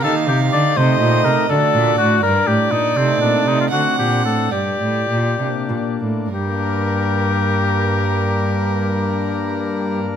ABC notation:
X:1
M:6/8
L:1/16
Q:3/8=72
K:Gm
V:1 name="Violin"
f6 e6 | d6 d6- | d6 ^f6 | d8- d z3 |
B12- | B12 |]
V:2 name="Oboe"
A2 G2 d2 c4 B2 | A4 ^F2 B2 G2 E2 | C2 D2 E F ^F2 G2 A2 | G8- G2 z2 |
G12- | G12 |]
V:3 name="Pipe organ"
[B,EG]6 [A,EG]6 | [A,D^F]6 D6 | [A,CE]6 [A,CD]6 | z6 [B,D]6 |
[G,,G,B,DB]12- | [G,,G,B,DB]12 |]
V:4 name="Pipe organ" clef=bass
E,2 C,2 D,2 C,2 B,,2 C,2 | D,2 B,,2 A,,2 G,,2 A,,2 B,,2 | C,2 B,,2 C,2 D,2 B,,2 A,,2 | G,,2 A,,2 B,,2 C,2 B,,2 A,,2 |
z12 | z12 |]
V:5 name="Cello" clef=bass
E,2 C,2 D,2 C,2 B,,2 C,2 | D,2 B,,2 A,,2 G,,2 A,,2 B,,2 | C,2 B,,2 C,2 D,2 B,,2 A,,2 | G,,2 A,,2 B,,2 C,2 B,,2 A,,2 |
G,,12- | G,,12 |]